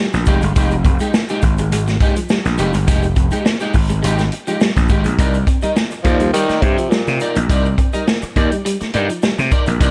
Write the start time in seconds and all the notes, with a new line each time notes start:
0.13 A#1, muted clean electric guitar stroke, snare, closed hi-hat, shaker
0.26 F1 G#3 D#4 G4, kick, closed hi-hat, shaker
0.41 G1 G#3, muted clean electric guitar stroke, closed hi-hat, shaker
0.56 F1 G#3 D#4 G4, kick, closed hi-hat, shaker
0.71 muted clean electric guitar stroke, closed hi-hat, shaker
0.84 F1 C4, muted clean electric guitar stroke, kick, closed hi-hat, shaker
0.99 G#3 D#4 G4, closed hi-hat, shaker
1.14 A#3, muted clean electric guitar stroke, snare, shaker
1.29 G#3 D#4 G4, muted clean electric guitar stroke, closed hi-hat, shaker
1.42 G#1, muted clean electric guitar stroke, kick, closed hi-hat, shaker
1.58 G#3, muted clean electric guitar stroke, closed hi-hat, shaker
1.72 G#1 G#3, closed hi-hat, shaker
1.87 muted clean electric guitar stroke, snare, closed hi-hat, shaker
2.00 G#3 D#4 G4, kick, closed hi-hat
2.16 F3, muted clean electric guitar stroke, closed hi-hat, shaker
2.29 G3, muted clean electric guitar stroke, snare, shaker
2.45 A#1, muted clean electric guitar stroke, snare, closed hi-hat, shaker
2.58 F1 G#3 D#4 G4, closed hi-hat, shaker
2.73 G1 G#3, muted clean electric guitar stroke, closed hi-hat, shaker
2.88 F1 G#3 D#4 G4, kick, closed hi-hat, shaker
3.02 muted clean electric guitar stroke, closed hi-hat, shaker
3.16 F1 C4, muted clean electric guitar stroke, kick, closed hi-hat, shaker
3.31 G#3 D#4 G4, closed hi-hat, shaker
3.45 A#3, muted clean electric guitar stroke, snare, shaker
3.60 G#3 D#4 G4, muted clean electric guitar stroke, closed hi-hat, shaker
3.74 G#1, muted clean electric guitar stroke, kick, open hi-hat, shaker
3.90 G#3, muted clean electric guitar stroke, closed hi-hat, shaker
4.03 G#1 G#3 D#4 G4, closed hi-hat, shaker
4.18 muted clean electric guitar stroke, snare, closed hi-hat, shaker
4.32 muted clean electric guitar stroke, closed hi-hat
4.47 F3 G#3 D#4 G4, closed hi-hat, shaker
4.61 G3, muted clean electric guitar stroke, snare, shaker
4.76 A#1, muted clean electric guitar stroke, kick, snare, closed hi-hat, shaker
4.88 G#1 G#3 D#4 G4, kick, closed hi-hat, shaker
5.04 A#1 G#3, muted clean electric guitar stroke, closed hi-hat, shaker
5.19 C2 D#4 A#4 D5, kick, closed hi-hat, shaker
5.34 muted clean electric guitar stroke, closed hi-hat, shaker
5.47 C4, muted clean electric guitar stroke, kick, closed hi-hat, shaker
5.62 G3 D#4 A#4 D#5, muted slap bass stroke, closed hi-hat, shaker
5.76 A#3, snare, shaker
5.91 muted clean electric guitar stroke, closed hi-hat, shaker
6.04 D#2 F3 D#4 A#4 D5, kick, closed hi-hat
6.20 G3, muted clean electric guitar stroke, closed hi-hat, shaker
6.33 D#3 G3 D#4 A#4 D5, closed hi-hat, shaker
6.49 muted clean electric guitar stroke, muted slap bass stroke, snare, closed hi-hat, shaker
6.62 G2 C3, muted clean electric guitar stroke, kick, closed hi-hat
6.78 F3, muted clean electric guitar stroke, closed hi-hat, shaker
6.90 A#2 G3, muted clean electric guitar stroke, snare, shaker
7.07 C3, muted clean electric guitar stroke, snare, closed hi-hat, shaker
7.20 D#4 A#4 D5, closed hi-hat, shaker
7.35 A#1 A#3, muted clean electric guitar stroke, closed hi-hat, shaker
7.50 C2 D#4 A#4 D5, kick, closed hi-hat, shaker
7.64 muted clean electric guitar stroke, shaker
7.78 C4, muted clean electric guitar stroke, kick, closed hi-hat, shaker
7.93 G3 D#4 A#4 D#5, muted slap bass stroke, closed hi-hat, shaker
8.08 A#3, snare, shaker
8.22 muted slap bass stroke, muted clean electric guitar stroke, closed hi-hat, shaker
8.36 D#2 D#4 A#4 D5, kick, closed hi-hat
8.51 G3, muted clean electric guitar stroke, closed hi-hat, shaker
8.65 G3, muted clean electric guitar stroke, closed hi-hat, shaker
8.81 muted clean electric guitar stroke, muted slap bass stroke, snare, closed hi-hat, shaker
8.94 G2 D#4 A#4 D5, closed hi-hat
9.09 F3, muted clean electric guitar stroke, closed hi-hat, shaker
9.22 G3, muted clean electric guitar stroke, snare, shaker
9.38 C3, muted clean electric guitar stroke, snare, closed hi-hat, shaker
9.51 D#4 A#4 D5, kick, closed hi-hat, shaker
9.66 A#1 A#3, muted clean electric guitar stroke, closed hi-hat, shaker
9.81 C2 D#4 A#4 D5, kick, closed hi-hat, shaker